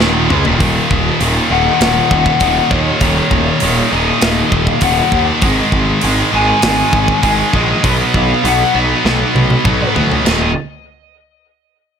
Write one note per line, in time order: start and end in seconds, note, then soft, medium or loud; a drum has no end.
0.00 0.28 D#1 medium
0.00 0.28 D#2 medium
0.00 0.28 A#2 medium
0.00 0.29 D#3 loud
0.00 snare medium
0.29 0.44 C#2 medium
0.29 0.43 C#3 medium
0.29 0.44 G#3 medium
0.29 mid tom medium
0.44 0.60 D#1 loud
0.44 0.57 D#2 medium
0.44 0.58 A#2 loud
0.44 floor tom medium
0.59 0.79 D#1 medium
0.59 1.20 D#2 loud
0.59 1.19 A#2 medium
0.59 1.21 D#3 loud
0.59 kick loud
0.59 open hi-hat soft
0.91 1.09 D#1 medium
0.91 kick medium
1.20 1.39 D#1 loud
1.20 1.49 D#2 medium
1.20 1.50 A#2 medium
1.20 1.51 D#3 loud
1.20 open hi-hat medium
1.50 1.68 D#1 medium
1.50 1.79 D#2 medium
1.50 1.80 A#2 medium
1.50 1.81 D#3 medium
1.50 2.75 F#5 loud
1.81 1.99 D#1 loud
1.81 2.39 D#2 loud
1.81 2.40 A#2 loud
1.81 2.41 D#3 loud
1.81 snare loud
1.81 open hi-hat medium
2.11 2.29 D#1 medium
2.11 kick medium
2.26 kick medium
2.40 2.59 D#1 medium
2.40 2.70 D#2 medium
2.40 2.71 A#2 medium
2.40 2.71 D#3 medium
2.40 kick medium
2.40 open hi-hat medium
2.71 2.89 D#2 loud
2.71 3.00 D#2 medium
2.71 3.01 A#2 medium
2.71 3.01 D#3 medium
2.71 3.87 C#5 medium
2.71 kick medium
3.01 3.20 D#1 loud
3.01 3.60 D#2 medium
3.01 3.60 A#2 loud
3.01 3.61 D#3 loud
3.01 kick loud
3.01 open hi-hat soft
3.31 3.49 D#1 medium
3.31 kick medium
3.60 3.81 D#1 loud
3.60 3.90 D#2 medium
3.60 3.90 A#2 medium
3.60 3.91 D#3 medium
3.60 open hi-hat medium
3.91 4.10 D#1 medium
3.91 4.20 D#2 medium
3.91 4.21 A#2 medium
3.91 4.22 D#3 loud
3.91 4.70 D#5 medium
4.21 4.41 D#1 medium
4.21 4.80 D#2 medium
4.21 4.81 A#2 medium
4.21 4.82 D#3 loud
4.21 snare loud
4.21 open hi-hat medium
4.52 4.70 D#1 medium
4.52 kick medium
4.67 4.81 F5 medium
4.67 kick medium
4.81 5.00 D#1 medium
4.81 5.11 D#2 medium
4.81 5.11 A#2 medium
4.81 5.12 D#3 medium
4.81 5.25 F#5 medium
4.81 kick loud
4.81 open hi-hat medium
5.12 5.40 D#2 medium
5.12 5.30 D#2 medium
5.12 5.40 A#2 medium
5.12 5.40 D#3 medium
5.12 kick medium
5.41 5.60 G#1 loud
5.41 6.00 G#2 loud
5.41 6.01 D#3 medium
5.41 6.02 G#3 medium
5.41 kick loud
5.41 open hi-hat medium
5.72 5.91 G#1 medium
5.72 kick medium
6.01 6.22 G#1 loud
6.01 6.30 G#2 medium
6.01 6.31 D#3 medium
6.01 6.32 G#3 medium
6.01 open hi-hat medium
6.31 6.51 G#1 medium
6.31 6.60 G#2 medium
6.31 6.61 D#3 medium
6.31 6.62 G#3 medium
6.31 7.58 G#5 loud
6.61 6.81 G#1 loud
6.61 7.21 G#2 loud
6.61 7.22 D#3 loud
6.61 7.22 G#3 loud
6.61 snare loud
6.61 open hi-hat medium
6.93 7.11 G#1 medium
6.93 kick medium
7.08 kick medium
7.22 7.42 G#1 medium
7.22 7.52 G#2 medium
7.22 7.53 D#3 medium
7.22 7.53 G#3 medium
7.22 kick medium
7.22 open hi-hat medium
7.53 7.72 A#1 medium
7.53 7.82 G#2 medium
7.53 7.82 D#3 medium
7.53 7.82 G#3 medium
7.53 8.17 D#5 medium
7.53 kick medium
7.83 8.02 B1 medium
7.83 8.42 B2 loud
7.83 8.44 F#3 medium
7.83 8.44 B3 medium
7.83 kick loud
7.83 open hi-hat soft
8.14 8.32 B1 medium
8.14 8.46 F5 medium
8.14 kick medium
8.43 8.62 B1 loud
8.43 8.73 B2 medium
8.43 8.74 F#3 medium
8.43 8.75 B3 medium
8.43 open hi-hat medium
8.48 8.77 F#5 medium
8.74 8.93 B1 medium
8.74 9.03 B2 medium
8.74 9.03 F#3 medium
8.74 9.04 B3 loud
8.79 9.93 D#5 medium
9.04 9.23 B1 medium
9.04 9.63 B2 loud
9.04 9.64 F#3 loud
9.04 9.65 B3 loud
9.04 snare medium
9.35 9.53 B1 medium
9.35 high tom medium
9.50 high tom medium
9.64 9.83 B1 medium
9.64 9.93 B2 medium
9.64 9.93 F#3 medium
9.64 9.94 B3 medium
9.64 kick medium
9.64 mid tom medium
9.94 10.14 D2 medium
9.94 10.23 B2 medium
9.94 10.23 F#3 medium
9.94 10.23 B3 medium
9.94 floor tom medium
10.12 floor tom medium
10.25 10.54 D#1 medium
10.25 10.49 D#2 medium
10.25 10.50 A#2 loud
10.25 10.50 D#3 loud
10.25 10.53 D#5 medium
10.25 snare medium
10.25 splash medium